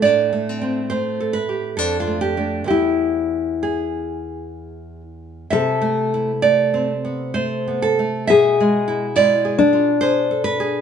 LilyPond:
<<
  \new Staff \with { instrumentName = "Nylon-string guitar" } { \time 3/4 \key a \minor \tempo 4 = 66 << { d''4 c''8 b'8 a'16 f'16 g'8 | g'4 gis'4. r8 | e''4 d''4 c''8 a'8 | e''4 d''4 c''8 b'8 | } \\ { \tuplet 3/2 { a,8 a8 c'8 a8 a'8 g'8 f,8 a8 <a d'>8 } | <e, b e'>2. | \tuplet 3/2 { c8 a8 e'8 a8 c'8 b8 a8 b8 a8 } | \tuplet 3/2 { b,8 gis8 e'8 gis8 gis'8 f'8 gis'8 a'8 gis'8 } | } >> }
  \new Staff \with { instrumentName = "Nylon-string guitar" } { \time 3/4 \key a \minor d'8 c'4. d'4 | e'2~ e'8 r8 | a'2. | gis'4 e'8 d'4. | }
>>